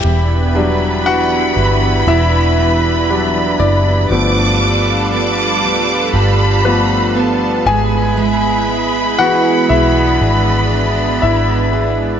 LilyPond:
<<
  \new Staff \with { instrumentName = "Violin section" } { \time 4/4 \key g \major \tempo 4 = 59 b''1 | d'''4 d'''4 b''4 a''8 b''8~ | b''1 | }
  \new Staff \with { instrumentName = "Grand piano" } { \time 4/4 \key g \major <g' g''>8 r8 <fis' fis''>4 <e' e''>4. <d' d''>8~ | <d' d''>4 r4. b'4 <gis' gis''>8~ | <gis' gis''>4 <fis' fis''>8 <e' e''>4. <e' e''>4 | }
  \new Staff \with { instrumentName = "Grand piano" } { \clef bass \time 4/4 \key g \major r8 <fis g d'>4. r4 <fis g d'>8 r8 | <f a b>4. r4 <f a b>8 r4 | r4 <e gis b>2. | }
  \new Staff \with { instrumentName = "Analog synth pad" } { \time 4/4 \key g \major << { <e b b'>1 | <g b'>2.~ <g b'>8 e'8~ | e'4. d'2~ d'8 | } \\ { <d' e'>1 | <f' a'>2.~ <f' a'>8 <gis b>8~ | <gis b>1 | } >> }
  \new Staff \with { instrumentName = "Steel-string acoustic guitar" } { \time 4/4 \key g \major e,8 g8 d'8 g8 e'8 g8 d'8 e'8 | g,8 g8 b8 g8 g'8 g8 b8 gis8 | gis8 b8 e'8 b8 gis'8 b8 e'8 gis'8 | }
  \new Staff \with { instrumentName = "Fingered electric bass" } { \clef bass \time 4/4 \key g \major e,,4. g,,8 e,,4. fis,,8 | g,,4. b,,8 g,,4. gis,,8~ | gis,,4. b,,8 gis,,4 gis,,4 | }
>>